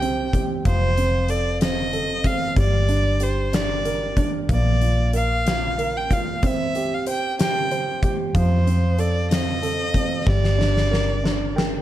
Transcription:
Already playing: fingered electric bass C2, upright piano C4 G4, violin G5
0.02 upright piano C4, closed hi-hat
0.33 upright piano G4, kick, closed hi-hat
0.65 fingered electric bass F1, upright piano F3, violin C5, kick, closed hi-hat
0.98 upright piano C4, closed hi-hat
1.28 upright piano A4, violin D5, closed hi-hat
1.61 upright piano C4, violin D#5, snare, closed hi-hat
1.93 upright piano A4, closed hi-hat
2.24 upright piano C4, violin F5, kick, closed hi-hat
2.56 fingered electric bass G1, upright piano G3, violin D5, kick, closed hi-hat
2.88 upright piano D4, closed hi-hat
3.20 upright piano G4, violin C5, closed hi-hat
3.53 upright piano D4, violin D5, snare, closed hi-hat
3.85 upright piano A#4, closed hi-hat
4.17 upright piano D4, kick, closed hi-hat
4.49 fingered electric bass A#1, upright piano A#3, violin D5, kick, closed hi-hat
4.81 upright piano F4, closed hi-hat
5.13 upright piano A#4, violin F5, closed hi-hat
5.46 upright piano F4, snare, closed hi-hat
5.78 upright piano A#4, closed hi-hat
5.97 violin G5
6.10 upright piano F4, violin F5, kick, closed hi-hat
6.43 fingered electric bass C2, upright piano C4, violin E5, kick, closed hi-hat
6.75 upright piano G4, closed hi-hat
6.94 violin F5
7.06 upright piano C5, violin G5, closed hi-hat
7.39 upright piano G4, violin G5, snare, closed hi-hat
7.71 upright piano C5, closed hi-hat
8.03 upright piano G4, kick, closed hi-hat
8.35 fingered electric bass F2, upright piano F3, violin C5, kick, closed hi-hat
8.66 upright piano C4, closed hi-hat
8.98 upright piano A4, violin D5, closed hi-hat
9.30 upright piano C4, violin D#5, snare, closed hi-hat
9.63 upright piano A4, closed hi-hat
9.94 upright piano C4, kick, closed hi-hat
10.27 fingered electric bass G1, upright piano G3, violin D5, kick, snare
10.44 snare
10.58 upright piano D4, snare
10.77 snare
10.91 upright piano A#4, snare
11.24 upright piano D4, snare
11.56 upright piano A#4 G5, snare

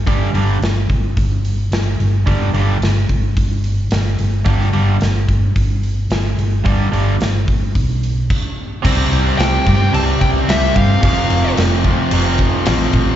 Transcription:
0.06 fingered electric bass G1, overdriven electric guitar G2 D3 G3, kick, open hi-hat
0.33 fingered electric bass G1, overdriven electric guitar G2 D3 G3, open hi-hat
0.61 fingered electric bass G1, snare, open hi-hat
0.89 fingered electric bass G1, kick, open hi-hat
1.17 fingered electric bass G1, kick, open hi-hat
1.45 open hi-hat
1.71 fingered electric bass G1, snare, open hi-hat
2.00 fingered electric bass G1, open hi-hat
2.27 fingered electric bass G1, overdriven electric guitar G2 D3 G3, kick, open hi-hat
2.54 fingered electric bass G1, overdriven electric guitar G2 D3 G3, open hi-hat
2.80 fingered electric bass G1, snare, open hi-hat
3.09 fingered electric bass G1, kick, open hi-hat
3.37 fingered electric bass G1, kick, open hi-hat
3.64 open hi-hat
3.91 fingered electric bass G1, snare, open hi-hat
4.19 fingered electric bass G1, open hi-hat
4.46 fingered electric bass G1, overdriven electric guitar G2 D3 G3, kick, open hi-hat
4.61 snare
4.73 fingered electric bass G1, overdriven electric guitar G2 D3 G3, open hi-hat
5.01 fingered electric bass G1, snare, open hi-hat
5.29 fingered electric bass G1, kick, open hi-hat
5.56 fingered electric bass G1, kick, open hi-hat
5.83 open hi-hat
6.10 fingered electric bass G1, snare, open hi-hat
6.38 fingered electric bass G1, open hi-hat
6.65 fingered electric bass G1, overdriven electric guitar G2 D3 G3, kick, open hi-hat
6.92 fingered electric bass G1, overdriven electric guitar G2 D3 G3, open hi-hat
7.20 fingered electric bass G1, snare, open hi-hat
7.48 fingered electric bass G1, kick, open hi-hat
7.75 fingered electric bass B1, kick, open hi-hat
8.03 open hi-hat
8.30 kick, crash
8.84 fingered electric bass C2, overdriven electric guitar C3 G3 C4, tonewheel organ C4 G4 D5, kick, crash
9.12 fingered electric bass C2, crash
9.38 fingered electric bass C2, lead electric guitar G5, snare, crash
9.66 fingered electric bass G2, overdriven electric guitar C3 G3 C4, kick, snare, crash
9.93 fingered electric bass C2, overdriven electric guitar C3 G3 C4, lead electric guitar A5, crash
10.21 fingered electric bass C2, lead electric guitar G5, kick, crash
10.47 fingered electric bass C2, overdriven electric guitar C3 G3 C4, lead electric guitar E5, snare, crash
10.76 fingered electric bass G2, lead electric guitar F5, kick, crash
11.02 fingered electric bass F1, overdriven electric guitar F2 C3 F3, tonewheel organ F3, kick, crash
11.30 fingered electric bass F1, crash
11.57 fingered electric bass F1, snare, crash
11.84 overdriven electric guitar F2 C3 F3, kick, crash
12.11 fingered electric bass F1, overdriven electric guitar F2 C3 F3, crash
12.38 kick, crash
12.65 fingered electric bass A1, overdriven electric guitar F2 C3 F3, snare, crash
12.93 fingered electric bass A1, kick, crash

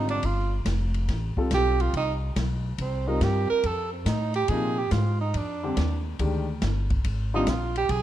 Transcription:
Already playing: upright bass G#1, grand piano D3 G3 C4 F4
0.09 tenor saxophone D4, ride
0.23 upright bass G1, tenor saxophone F4, kick, ride
0.65 upright bass F1, kick, snare, hi-hat pedal, ride
0.94 ride
1.08 upright bass A1, kick, snare, ride
1.37 grand piano G3 C4 F4 A4, muted upright bass stroke, kick
1.51 upright bass B1, tenor saxophone G4, kick, snare, hi-hat pedal, ride
1.80 tenor saxophone F4, ride
1.93 upright bass C2, tenor saxophone D#4, kick, ride
2.36 upright bass B1, kick, snare, hi-hat pedal, ride
2.78 upright bass C2, tenor saxophone C4, kick, ride
3.07 grand piano G3 C4 F4 A#4, tenor saxophone D#4
3.21 upright bass G2, tenor saxophone G4, kick, snare, hi-hat pedal, ride
3.50 tenor saxophone A#4, muted upright bass stroke
3.63 upright bass F2, tenor saxophone A4, kick, ride
3.93 tenor saxophone C4
4.06 upright bass A2, tenor saxophone D#4, kick, snare, hi-hat pedal, ride
4.34 tenor saxophone G4, ride
4.48 upright bass A#2, grand piano C3 F3 A#3 D#4, tenor saxophone G#4, kick, ride
4.79 tenor saxophone G4
4.91 upright bass G#2, tenor saxophone F4, kick, snare, hi-hat pedal, ride
5.21 tenor saxophone D#4
5.34 upright bass F2, tenor saxophone D4, kick, ride
5.63 grand piano D3 G3 C4 G4
5.77 upright bass D#2, kick, snare, hi-hat pedal, ride
6.19 upright bass D2, grand piano D#3 G#3 D4 G4, kick, ride
6.62 upright bass G1, kick, snare, hi-hat pedal, ride
6.90 kick, ride
7.04 upright bass G#1, kick, ride
7.34 grand piano D3 G3 C4 F4, tenor saxophone D#4
7.47 upright bass A#1, tenor saxophone F4, kick, snare, hi-hat pedal, ride
7.76 tenor saxophone G4, ride
7.89 upright bass B1, tenor saxophone G#4, kick, ride

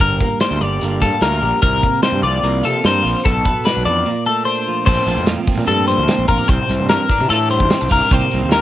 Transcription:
0.00 fingered electric bass G1, clean electric guitar G2 A#4, kick
0.10 closed hi-hat
0.20 clean electric guitar A#3, kick, closed hi-hat
0.40 clean electric guitar D4 C5, snare, closed hi-hat
0.51 fingered electric bass D2, closed hi-hat
0.61 fingered electric bass G1, clean electric guitar G3 D5, closed hi-hat
0.81 fingered electric bass G1, clean electric guitar A#3, closed hi-hat
1.01 fingered electric bass G2, clean electric guitar F4 A4, kick, closed hi-hat
1.11 closed hi-hat
1.21 fingered electric bass D2, clean electric guitar A#3 A#4, snare, closed hi-hat
1.32 closed hi-hat
1.41 fingered electric bass A#1, clean electric guitar G3, closed hi-hat
1.62 fingered electric bass C2, clean electric guitar C3 A#4, kick, closed hi-hat
1.73 closed hi-hat
1.82 clean electric guitar A#3, kick, closed hi-hat
1.93 closed hi-hat
2.02 clean electric guitar C4 C5, snare, closed hi-hat
2.12 fingered electric bass G2
2.23 fingered electric bass C2, clean electric guitar F3 D5, closed hi-hat
2.43 fingered electric bass C2, clean electric guitar A#3, closed hi-hat
2.63 fingered electric bass C3, clean electric guitar F4 A4, closed hi-hat
2.84 fingered electric bass G2, clean electric guitar A#3 C5, snare, closed hi-hat
2.96 closed hi-hat
3.04 fingered electric bass A#1, clean electric guitar F3, open hi-hat
3.24 fingered electric bass B1, clean electric guitar B2 A4, kick, closed hi-hat
3.36 closed hi-hat
3.45 clean electric guitar B3, kick, closed hi-hat
3.65 clean electric guitar D4 B4, snare, closed hi-hat
3.76 fingered electric bass B1, closed hi-hat
3.85 fingered electric bass F2, clean electric guitar E3 D5, closed hi-hat
4.05 clean electric guitar A#2
4.26 clean electric guitar A3 A4
4.45 clean electric guitar D4 C5
4.68 clean electric guitar F3
4.86 fingered electric bass A#1, clean electric guitar A#2 F3 A3 C4 A4 C5, kick, crash
5.07 fingered electric bass A#1, clean electric guitar A3, closed hi-hat
5.17 fingered electric bass F2
5.27 clean electric guitar F3, snare, closed hi-hat
5.47 clean electric guitar C4, kick, open hi-hat
5.58 fingered electric bass A#2
5.67 fingered electric bass G2, clean electric guitar A4, closed hi-hat
5.88 clean electric guitar F2 C5, closed hi-hat
5.98 fingered electric bass D2
6.08 clean electric guitar C4, snare, closed hi-hat
6.18 fingered electric bass A#1
6.28 fingered electric bass A#1, clean electric guitar F4 A#4, kick, closed hi-hat
6.38 clean electric guitar G4
6.48 fingered electric bass C2, clean electric guitar C3 C5, kick, closed hi-hat
6.69 fingered electric bass C2, snare, closed hi-hat
6.80 fingered electric bass G2
6.89 clean electric guitar E3 A#4, snare, closed hi-hat
7.09 clean electric guitar D4, kick, closed hi-hat
7.21 fingered electric bass C3
7.30 fingered electric bass A2, clean electric guitar F4 A4, closed hi-hat
7.39 clean electric guitar G4
7.50 clean electric guitar G2 C5, closed hi-hat
7.60 fingered electric bass E2, kick
7.70 clean electric guitar C4, snare, closed hi-hat
7.81 fingered electric bass C2, clean electric guitar D4, snare
7.90 fingered electric bass C2, clean electric guitar F4 A#4, kick, open hi-hat
8.01 clean electric guitar G4
8.10 fingered electric bass C2, clean electric guitar C3 D#3 A#3 G4 C5, kick, closed hi-hat
8.15 clean electric guitar C4
8.31 fingered electric bass C2, clean electric guitar A#3, closed hi-hat
8.43 fingered electric bass D#2
8.51 clean electric guitar D#3 A#4, snare, closed hi-hat

